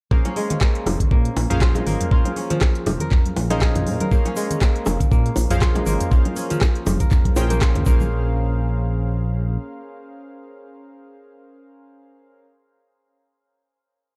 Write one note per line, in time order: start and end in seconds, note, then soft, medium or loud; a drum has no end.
0.11 0.21 A#1 loud
0.11 0.61 A#3 medium
0.11 1.47 C#4 medium
0.11 1.47 G#4 medium
0.11 1.47 A#4 medium
0.11 1.47 C5 medium
0.11 1.47 F5 medium
0.11 kick loud
0.25 0.50 C#4 loud
0.25 closed hi-hat soft
0.25 low bongo medium
0.25 high conga medium
0.36 1.74 G#3 loud
0.36 open hi-hat medium
0.36 muted conga medium
0.50 2.24 C#4 medium
0.50 closed hi-hat medium
0.50 low conga loud
0.61 1.11 A#3 medium
0.61 kick loud
0.61 cross-stick loud
0.61 clap loud
0.61 muted conga soft
0.75 closed hi-hat soft
0.86 0.96 F1 medium
0.86 cross-stick medium
0.86 open hi-hat medium
0.86 high bongo loud
0.86 low bongo medium
0.86 muted conga medium
0.86 high conga loud
1.00 kick medium
1.00 closed hi-hat medium
1.00 low conga loud
1.11 1.30 A#2 medium
1.11 1.86 A#3 medium
1.11 kick loud
1.11 muted conga soft
1.25 closed hi-hat soft
1.36 1.46 A#1 loud
1.36 open hi-hat medium
1.36 low bongo loud
1.50 1.81 A#1 medium
1.50 2.49 F3 medium
1.50 2.09 C#4 medium
1.50 2.09 G#4 medium
1.50 2.09 A#4 medium
1.50 2.09 C5 medium
1.50 2.09 F5 loud
1.50 closed hi-hat medium
1.50 mid tom medium
1.50 muted conga medium
1.61 2.11 F4 loud
1.61 kick loud
1.61 cross-stick loud
1.61 clap loud
1.75 4.09 G#3 medium
1.75 closed hi-hat soft
1.75 high bongo medium
1.75 low bongo medium
1.75 muted conga soft
1.75 high conga medium
1.86 1.96 G#1 medium
1.86 3.79 A#3 loud
1.86 open hi-hat medium
1.86 high conga medium
1.86 low conga medium
2.01 closed hi-hat medium
2.01 mid tom medium
2.01 muted conga medium
2.11 2.21 A#1 medium
2.11 3.47 C#4 medium
2.11 3.63 F4 medium
2.11 3.47 G#4 medium
2.11 3.47 A#4 medium
2.11 3.47 C5 medium
2.11 3.47 F5 medium
2.11 kick loud
2.25 closed hi-hat soft
2.25 low bongo medium
2.25 high conga medium
2.36 4.11 C#4 medium
2.36 open hi-hat medium
2.36 muted conga soft
2.50 4.84 F3 loud
2.50 closed hi-hat medium
2.50 low conga loud
2.61 kick loud
2.61 cross-stick loud
2.61 clap loud
2.61 high bongo medium
2.61 low bongo medium
2.75 closed hi-hat soft
2.86 2.96 F1 medium
2.86 mid tom medium
2.86 open hi-hat loud
2.86 high bongo loud
2.86 low bongo medium
2.86 muted conga medium
2.86 high conga loud
3.00 4.00 A#4 medium
3.00 closed hi-hat medium
3.00 low conga medium
3.11 kick loud
3.11 clap medium
3.11 mid tom medium
3.11 muted conga soft
3.25 closed hi-hat soft
3.25 high conga medium
3.36 3.88 A#1 loud
3.36 open hi-hat loud
3.36 low bongo loud
3.50 4.09 C#4 medium
3.50 5.13 D#4 loud
3.50 4.09 G#4 medium
3.50 4.09 A#4 medium
3.50 4.09 C5 medium
3.50 4.09 F5 loud
3.50 closed hi-hat medium
3.50 muted conga medium
3.50 high conga medium
3.61 4.98 G#4 medium
3.61 kick loud
3.61 cross-stick loud
3.61 clap loud
3.75 closed hi-hat soft
3.75 mid tom medium
3.75 low bongo medium
3.75 muted conga soft
3.75 low conga loud
3.86 3.96 A#2 medium
3.86 open hi-hat medium
3.86 high conga medium
4.00 5.28 A#4 medium
4.00 closed hi-hat medium
4.00 muted conga medium
4.00 high conga loud
4.00 low conga loud
4.11 4.21 A#1 loud
4.11 4.61 A#3 medium
4.11 5.47 C#4 medium
4.11 5.47 G#4 medium
4.11 5.47 A#4 medium
4.11 5.47 C5 medium
4.11 5.47 F5 medium
4.11 kick loud
4.11 shaker soft
4.25 4.50 C#4 loud
4.25 closed hi-hat soft
4.25 low bongo medium
4.25 high conga medium
4.36 5.74 G#3 loud
4.36 open hi-hat medium
4.36 muted conga soft
4.36 shaker loud
4.51 6.25 C#4 medium
4.51 closed hi-hat medium
4.51 low conga loud
4.51 shaker medium
4.61 5.11 A#3 medium
4.61 kick loud
4.61 cross-stick loud
4.61 clap loud
4.61 muted conga soft
4.61 shaker soft
4.76 closed hi-hat soft
4.86 4.96 F1 medium
4.86 cross-stick medium
4.86 open hi-hat medium
4.86 high bongo loud
4.86 low bongo medium
4.86 muted conga medium
4.86 high conga loud
4.86 shaker medium
5.00 kick medium
5.00 closed hi-hat medium
5.00 low conga medium
5.00 shaker medium
5.12 5.30 A#2 medium
5.12 5.86 A#3 medium
5.12 kick loud
5.12 muted conga soft
5.12 shaker soft
5.26 closed hi-hat soft
5.36 5.46 A#1 loud
5.36 open hi-hat medium
5.36 low bongo loud
5.36 shaker medium
5.50 5.81 A#1 medium
5.50 6.49 F3 medium
5.50 6.09 C#4 medium
5.50 6.09 G#4 medium
5.50 6.09 A#4 medium
5.50 6.09 C5 medium
5.50 6.09 F5 loud
5.50 closed hi-hat medium
5.50 mid tom medium
5.50 muted conga soft
5.50 shaker medium
5.61 6.11 F4 loud
5.61 kick loud
5.61 cross-stick loud
5.61 clap loud
5.61 shaker soft
5.75 7.92 G#3 medium
5.75 closed hi-hat soft
5.75 high bongo medium
5.75 low bongo medium
5.75 muted conga soft
5.75 high conga medium
5.86 5.96 G#1 medium
5.86 7.50 A#3 loud
5.86 open hi-hat medium
5.86 high conga medium
5.86 low conga medium
5.86 shaker loud
6.00 closed hi-hat medium
6.00 mid tom medium
6.00 muted conga medium
6.00 shaker medium
6.11 6.21 A#1 loud
6.11 7.34 C#4 medium
6.11 7.36 F4 medium
6.11 7.34 G#4 medium
6.11 7.34 A#4 medium
6.11 7.34 C5 medium
6.11 7.34 F5 medium
6.11 kick loud
6.11 shaker soft
6.25 closed hi-hat soft
6.25 low bongo medium
6.25 high conga medium
6.36 8.10 C#4 medium
6.36 open hi-hat medium
6.36 muted conga soft
6.36 shaker loud
6.50 7.92 F3 loud
6.50 closed hi-hat medium
6.50 low conga loud
6.50 shaker medium
6.61 kick loud
6.61 cross-stick loud
6.61 clap loud
6.61 high bongo medium
6.61 low bongo medium
6.61 shaker soft
6.75 closed hi-hat soft
6.86 6.96 F1 medium
6.86 mid tom medium
6.86 open hi-hat medium
6.86 high bongo loud
6.86 low bongo medium
6.86 muted conga medium
6.86 high conga loud
6.86 shaker loud
7.00 8.27 A#4 medium
7.00 kick medium
7.00 closed hi-hat medium
7.00 low conga loud
7.00 shaker medium
7.11 kick loud
7.11 clap medium
7.11 mid tom medium
7.11 muted conga soft
7.11 shaker soft
7.25 kick medium
7.25 closed hi-hat soft
7.25 high conga medium
7.36 7.75 A#1 loud
7.36 7.85 C#4 medium
7.36 7.61 F4 medium
7.36 7.85 G#4 medium
7.36 7.85 A#4 medium
7.36 7.85 C5 medium
7.36 7.87 G5 loud
7.36 open hi-hat medium
7.36 low bongo loud
7.36 shaker loud
7.50 7.86 A#3 medium
7.50 closed hi-hat medium
7.50 muted conga medium
7.50 high conga medium
7.50 shaker medium
7.61 9.13 F4 medium
7.61 kick loud
7.61 cross-stick loud
7.61 clap loud
7.61 shaker soft
7.75 7.83 C#2 medium
7.75 closed hi-hat soft
7.75 mid tom medium
7.75 low bongo medium
7.75 muted conga soft
7.75 low conga loud
7.86 9.58 A#1 medium
7.86 9.79 A#3 medium
7.86 12.46 C#4 medium
7.86 12.46 G#4 medium
7.86 12.46 A#4 medium
7.86 12.46 C5 medium
7.86 12.46 F5 medium
7.86 kick loud
7.86 high conga medium
7.86 shaker loud
8.00 muted conga soft
8.00 high conga loud
8.00 low conga loud
8.00 shaker medium